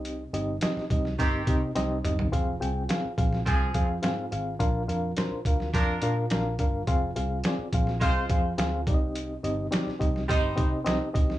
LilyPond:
<<
  \new Staff \with { instrumentName = "Reed electric piano" } { \time 4/4 \key f \dorian \tempo 4 = 106 <c' ees' g' ees''>8 <c' ees' g' ees''>8 <c' ees' g' ees''>8 <c' ees' g' ees''>8 <c' ees' g' ees''>8 <c' ees' g' ees''>8 <c' ees' g' ees''>8 <c' ees' g' ees''>8 | <c' f' aes' f''>8 <c' f' aes' g''>8 <c' f' aes' f''>8 <c' f' aes' f''>8 <c' f' aes' aes''>8 <c' f' aes' f''>8 <c' f' aes' f''>8 <c' f' aes' f''>8 | <d' f' bes' f''>8 <d' f' bes' f''>8 <d' f' bes' c''>8 <d' f' bes' f''>8 <d' f' bes' f''>8 <d' f' bes' f''>8 <d' f' bes' f''>8 <d' f' bes' f''>8 | <c' f' aes' f''>8 <c' f' aes' f''>8 <c' f' aes' d''>8 <c' f' aes' f''>8 <c' f' aes' f''>8 <c' f' aes' f''>8 <c' f' aes' f''>8 <c' ees' g' d'' ees''>8~ |
<c' ees' g' d'' ees''>8 <c' ees' g' ees''>8 <c' ees' g' d''>8 <c' ees' g' ees''>8 <c' ees' g' ees''>8 <c' ees' g' ees''>8 <c' ees' g' ees''>8 <c' ees' g' ees''>8 | }
  \new Staff \with { instrumentName = "Reed electric piano" } { \clef bass \time 4/4 \key f \dorian c4 r2. | r1 | bes,4. r2 r8 | r2. r8 c8~ |
c4 r2. | }
  \new Staff \with { instrumentName = "Horn section" } { \time 4/4 \key f \dorian r2 <ees c' g'>8. r4 r16 | r2 <f c' aes'>8. r4 r16 | r2 <f d' bes'>8. r4 r16 | r2 <aes f' c''>8. r4 r16 |
r2 <g ees' c''>8. r4 r16 | }
  \new Staff \with { instrumentName = "Fingered electric bass" } { \clef bass \time 4/4 \key f \dorian c,8 g,,8 r8 c,8 g,,8 c8 c,8 g,,8 | f,,8 c,8 r8 bes,,8 c,8 f,8 aes,8 aes,,8 | bes,,8 f,8 r8 d,8 f,8 bes,8 bes,,8 g,,8 | f,,8 c,8 r8 bes,,8 c,8 f,8 d,8 c,8~ |
c,8 g,,8 r8 c,8 g,,8 c8 c,16 r16 d,8 | }
  \new DrumStaff \with { instrumentName = "Drums" } \drummode { \time 4/4 hh8 hh8 <hh sn>16 sn16 <hh bd>16 sn16 <hh bd>8 <hh bd>8 <hh sn>8 <hh toml>16 tomfh16 | <hh bd>8 hh8 <hh sn>8 <hh bd>16 sn16 <hh bd>8 <hh bd>8 <hh sn>8 hh8 | <hh bd>8 hh8 <hh sn>8 <hh bd>16 sn16 <hh bd>8 hh8 <hh sn>8 <hh bd>8 | <hh bd>8 hh8 <hh sn>8 <hh bd>16 sn16 <hh bd>8 <hh bd>8 <hh sn>8 <hh bd>8 |
hh8 hh8 <hh sn>16 sn16 <hh bd>16 sn16 <hh bd>8 <hh bd>8 <hh sn>8 <hh bd>16 sn16 | }
>>